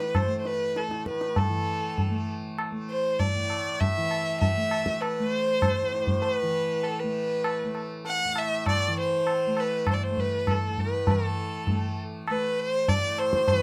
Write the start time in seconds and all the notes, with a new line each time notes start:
Already playing: A2 E3 A3 B4
0.00 tabla te
0.15 C5, tabla na, tabla ge
0.27 A3
0.39 C5
0.45 B4, tabla te
0.76 A4, tabla te
0.88 A2, tabla te
1.06 B4, tabla ke
1.21 tabla te
1.36 A4, tabla tin, tabla ge
1.49 E3
1.98 tabla tin, tabla ge
2.10 A3
2.58 tabla na
2.72 A3
2.90 C5
3.20 D5, tabla tin, tabla ge
3.35 A2
3.50 tabla na
3.80 E5, tabla tin, tabla ge
3.97 E3
4.11 tabla na
4.41 E5, tabla tin, tabla ge
4.57 A3
4.71 tabla na
4.86 tabla ke
5.01 B4, tabla na
5.20 A3
5.32 C5
5.62 tabla na, tabla ge
5.82 A2
5.92 tabla te
6.07 tabla ge
6.22 C5, tabla tin
6.34 B4
6.42 E3
6.83 A4, tabla tin
6.99 B4
7.04 A3
7.44 tabla na
7.64 A3
7.75 tabla na
8.05 F#5, tabla tin
8.25 A2
8.36 E5, tabla na
8.66 D5, tabla na, tabla ge
8.87 E3
9.00 C5
9.27 tabla na
9.47 A3
9.57 B4, tabla na
9.87 C5, tabla na, tabla ge
9.94 D5
10.03 C5
10.10 A3
10.17 B4, tabla ge
10.47 A4, tabla na, tabla ge
10.70 A2
10.78 B4, tabla ge
11.07 E3 A4, tabla tin, tabla ge
11.67 A3, tabla tin, tabla ge
12.28 A3 B4, tabla na
12.60 C5
12.88 A2 D5, tabla tin, tabla ge
13.18 C5, tabla na
13.33 tabla ke
13.48 B4, tabla tin, tabla ge
13.52 E3